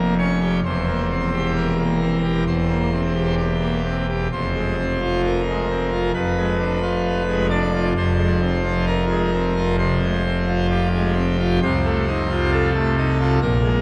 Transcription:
Already playing: F1 F2 A#3 A#4
0.19 C#4 C#5
0.41 G4
0.64 E1 E2 C5
0.88 A#3
1.11 C4
1.33 G4
1.56 A#4
1.79 A#3
2.02 C4
2.24 G4
2.46 E1 E2 C5
2.69 A#3
2.93 C4
3.15 G4
3.37 G4
3.60 A#3
3.84 C4
4.09 G4
4.32 F1 F2 C5
4.55 G#3
4.78 C4
5.01 F4
5.25 A#4
5.48 G#3
5.71 C4
5.92 F4
6.14 F1 F2 B4
6.38 G#3
6.59 D4
6.82 F4
7.28 G#3
7.50 D4 D5
7.74 F4
7.97 F1 F2 C5
8.18 G#3
8.41 C4
8.64 F4
8.87 A#4
9.10 G#3
9.33 C4
9.57 F4
9.79 C3 C5
10.02 G#3
10.26 C4
10.48 F4
10.71 G4
10.94 G#3
11.15 C4
11.39 F4
11.61 C2 C3 C5
11.85 A3
12.07 D#4
12.30 F4
12.52 A4
12.75 A3
12.98 D#4
13.21 F4
13.41 A#1 A#2 A#4
13.63 G#3

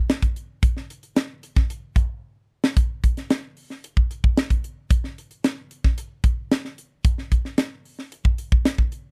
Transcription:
0.10 snare, closed hi-hat
0.22 kick, closed hi-hat
0.36 closed hi-hat
0.63 kick, closed hi-hat
0.77 snare
0.90 closed hi-hat
1.03 closed hi-hat
1.16 snare, closed hi-hat
1.43 closed hi-hat
1.56 kick, snare
1.70 closed hi-hat
1.96 kick, closed hi-hat
2.64 snare
2.77 kick, closed hi-hat
3.04 kick, closed hi-hat
3.17 snare, closed hi-hat
3.30 snare, closed hi-hat
3.57 open hi-hat
3.70 snare
3.84 closed hi-hat
3.97 kick
4.11 closed hi-hat
4.24 kick
4.37 snare, closed hi-hat
4.50 kick, closed hi-hat
4.64 closed hi-hat
4.91 kick, closed hi-hat
5.04 snare
5.18 closed hi-hat
5.31 closed hi-hat
5.44 snare, closed hi-hat
5.71 closed hi-hat
5.84 kick, snare
5.98 closed hi-hat
6.24 kick, closed hi-hat
6.51 snare, closed hi-hat
6.65 snare
6.78 closed hi-hat
7.05 kick, closed hi-hat
7.18 snare
7.32 kick, closed hi-hat
7.45 snare
7.58 snare, closed hi-hat
7.85 open hi-hat
7.99 snare
8.12 closed hi-hat
8.25 kick
8.38 closed hi-hat
8.52 kick
8.65 snare, closed hi-hat
8.78 kick
8.92 closed hi-hat

